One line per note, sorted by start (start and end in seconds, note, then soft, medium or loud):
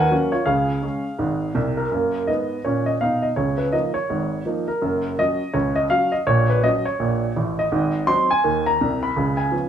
0.00 0.13 D#2 medium
0.00 0.13 D#3 medium
0.00 0.31 A#4 medium
0.00 0.13 B4 medium
0.00 0.33 F#5 medium
0.00 0.13 G#5 loud
0.11 0.31 F#3 soft
0.11 0.31 A#3 soft
0.11 0.31 C#4 medium
0.32 0.46 F4 medium
0.32 0.47 C#5 medium
0.46 0.77 C#2 medium
0.46 0.77 C#3 medium
0.46 1.51 G#4 medium
0.46 1.55 F5 medium
0.82 1.02 G#3 soft
0.82 1.03 C#4 soft
1.19 1.50 G#1 medium
1.19 1.50 G#2 medium
1.55 1.84 C2 medium
1.55 1.84 C3 medium
1.77 2.28 A#4 medium
1.92 2.21 F#2 soft
1.92 2.22 A#3 soft
2.27 2.57 G#2 soft
2.27 2.58 B3 soft
2.27 2.64 D#5 medium
2.65 2.93 A#2 soft
2.65 2.94 C#4 medium
2.65 2.87 C#5 medium
2.86 3.00 D#5 medium
3.01 3.30 B2 soft
3.01 3.31 D#4 medium
3.01 3.23 F5 medium
3.22 3.36 D#5 medium
3.36 3.68 C#2 soft
3.36 3.67 C#3 medium
3.36 3.59 C#5 medium
3.58 3.72 B4 medium
3.72 3.93 F3 soft
3.72 3.93 A#3 soft
3.72 3.93 D#4 soft
3.72 3.95 D#5 medium
3.94 4.45 C#5 medium
4.10 4.40 G#1 medium
4.10 4.40 G#2 medium
4.46 4.66 F3 soft
4.46 4.66 A#3 soft
4.46 4.66 D#4 soft
4.68 5.18 A#4 medium
4.82 5.13 F#1 soft
4.82 5.13 F#2 medium
5.19 5.39 F#3 soft
5.19 5.39 C#4 soft
5.19 5.39 F#4 soft
5.19 5.55 D#5 medium
5.54 5.85 C#2 medium
5.54 5.85 C#3 medium
5.54 5.76 C#5 medium
5.76 5.90 D#5 medium
5.90 6.11 F#3 soft
5.90 6.11 C#4 soft
5.90 6.11 F#4 soft
5.90 6.13 F5 medium
6.12 6.26 D#5 medium
6.27 6.57 A#1 medium
6.27 6.58 A#2 medium
6.27 6.49 C#5 medium
6.50 6.63 B4 medium
6.63 6.83 F#3 soft
6.63 6.84 C#4 soft
6.63 6.84 F#4 soft
6.63 6.86 D#5 medium
6.85 7.35 C#5 medium
6.99 7.30 A#1 medium
6.99 7.30 A#2 medium
7.36 7.65 A1 medium
7.36 7.65 A2 medium
7.59 8.08 D#5 medium
7.72 8.03 G#1 medium
7.72 8.03 G#2 medium
8.07 8.27 F#3 soft
8.07 8.28 C4 soft
8.07 8.28 D#4 soft
8.07 8.30 C6 medium
8.31 8.67 G#5 medium
8.44 8.75 D#2 medium
8.44 8.75 D#3 medium
8.66 9.03 A#5 medium
8.81 9.10 C2 medium
8.81 9.10 C3 medium
9.03 9.39 B5 medium
9.16 9.47 C#2 soft
9.16 9.47 C#3 medium
9.37 9.69 G#5 medium
9.51 9.69 F3 soft
9.51 9.69 B3 soft
9.51 9.69 C#4 soft